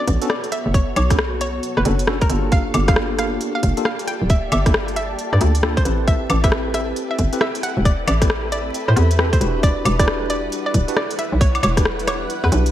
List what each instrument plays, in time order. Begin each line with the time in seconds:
Already playing: tine electric piano B3 C#4 D4 F#4 A4, ambient pad B3 E4 F#4 C#5, string machine F#4 A4 C#5
0.00 synth pluck D5
0.07 fm bass A1, kick, closed hi-hat
0.22 tine electric piano B3 C#4 D4 F#4 A4, closed hi-hat
0.30 synth pluck D5, cross-stick
0.44 closed hi-hat
0.52 synth pluck E5, cross-stick, closed hi-hat
0.66 fm bass F#1
0.74 synth pluck C#5, kick, closed hi-hat
0.96 fm bass B1, synth pluck C#5, closed hi-hat, high woodblock
1.10 tine electric piano B3 C#4 D4 F#4 A4, kick, cross-stick, closed hi-hat
1.19 cross-stick
1.41 synth pluck C#5, closed hi-hat
1.63 closed hi-hat
1.77 fm bass F#1, synth pluck B4, cross-stick
1.85 fm bass F#1, tine electric piano B3 C#4 D4 F#4 A4, closed hi-hat
1.99 closed hi-hat
2.07 tine electric piano B3 C#4 D4 F#4 A4, cross-stick
2.21 synth pluck A#4, kick, closed hi-hat
2.29 fm bass G1, tine electric piano A#3 D4 F4 G4 A4, string machine A#3 F4, ambient pad G4, cross-stick, closed hi-hat
2.42 ambient pad D5
2.52 synth pluck F5, kick, closed hi-hat
2.74 fm bass G1, closed hi-hat, high woodblock
2.88 tine electric piano A#3 D4 F4 G4 A4, synth pluck F5, kick, cross-stick, closed hi-hat
2.96 cross-stick
3.19 synth pluck F5, cross-stick, closed hi-hat
3.41 closed hi-hat
3.55 synth pluck F5, ambient pad A5
3.63 fm bass F1, kick, closed hi-hat
3.77 tine electric piano A#3 D4 F4 G4 A4, closed hi-hat
3.85 synth pluck F5, cross-stick
3.99 closed hi-hat
4.08 synth pluck G5, cross-stick, closed hi-hat
4.22 fm bass D1
4.30 synth pluck E5, kick, closed hi-hat
4.52 fm bass G1, synth pluck E5, closed hi-hat, high woodblock
4.66 tine electric piano A#3 D4 F4 G4 A4, kick, cross-stick, closed hi-hat
4.74 cross-stick
4.88 closed hi-hat
4.96 synth pluck E5, closed hi-hat
5.19 closed hi-hat
5.33 fm bass G2, synth pluck D5, cross-stick
5.41 fm bass D2, tine electric piano A#3 D4 F4 G4 A4, closed hi-hat
5.55 closed hi-hat
5.63 tine electric piano A#3 D4 F4 G4 A4, cross-stick
5.77 synth pluck C5, kick, closed hi-hat
5.85 fm bass A1, tine electric piano C4 E4 G4 A4 B4, cross-stick, closed hi-hat
6.08 string machine C4 E4 G4 B4, ambient pad A4, synth pluck E5, kick, closed hi-hat
6.30 fm bass A1, closed hi-hat, high woodblock
6.44 tine electric piano C4 E4 G4 A4 B4, synth pluck E5, kick, cross-stick, closed hi-hat
6.51 ambient pad E5, cross-stick
6.74 synth pluck E5, cross-stick, closed hi-hat
6.96 closed hi-hat
7.06 ambient pad B5
7.11 synth pluck E5
7.19 fm bass G1, kick, closed hi-hat
7.33 tine electric piano C4 E4 G4 A4 B4, closed hi-hat
7.41 synth pluck E5, cross-stick
7.55 closed hi-hat
7.63 synth pluck F#5, cross-stick, closed hi-hat
7.77 fm bass E1
7.85 synth pluck D5, kick, closed hi-hat
8.08 fm bass A1, synth pluck D5, closed hi-hat, high woodblock
8.21 tine electric piano C4 E4 G4 A4 B4, kick, cross-stick, closed hi-hat
8.30 cross-stick
8.52 synth pluck D5, closed hi-hat
8.74 closed hi-hat
8.88 fm bass A2, synth pluck C5, cross-stick
8.96 fm bass E2, tine electric piano C4 E4 G4 A4 B4, closed hi-hat
9.11 closed hi-hat
9.19 tine electric piano C4 E4 G4 A4 B4, cross-stick
9.33 synth pluck C5, kick, closed hi-hat
9.41 fm bass E1, tine electric piano D4 E4 F#4 G4 B4, cross-stick, closed hi-hat
9.63 string machine G3 D4 F#5, ambient pad E4, synth pluck D5, kick, closed hi-hat
9.84 fm bass E1, ambient pad B4, closed hi-hat, high woodblock
9.99 tine electric piano D4 E4 F#4 G4 B4, synth pluck D5, kick, cross-stick, closed hi-hat
10.08 cross-stick
10.30 synth pluck D5, closed hi-hat
10.42 ambient pad F#5
10.52 closed hi-hat
10.66 synth pluck D5
10.74 fm bass D1, kick, closed hi-hat
10.88 tine electric piano D4 E4 F#4 G4 B4, closed hi-hat
10.97 synth pluck D5, cross-stick
11.11 closed hi-hat
11.19 synth pluck E5, cross-stick, closed hi-hat
11.32 fm bass B1
11.41 synth pluck C#5, kick, closed hi-hat
11.55 closed hi-hat, high woodblock
11.63 fm bass E1, synth pluck C#5, closed hi-hat, high woodblock
11.77 tine electric piano D4 E4 F#4 G4 B4, kick, cross-stick, closed hi-hat
11.85 cross-stick
11.99 closed hi-hat
12.07 synth pluck C#5, cross-stick, closed hi-hat, high woodblock
12.30 closed hi-hat
12.44 fm bass E2, synth pluck B4, cross-stick
12.52 fm bass B1, tine electric piano D4 E4 F#4 G4 B4, closed hi-hat
12.66 closed hi-hat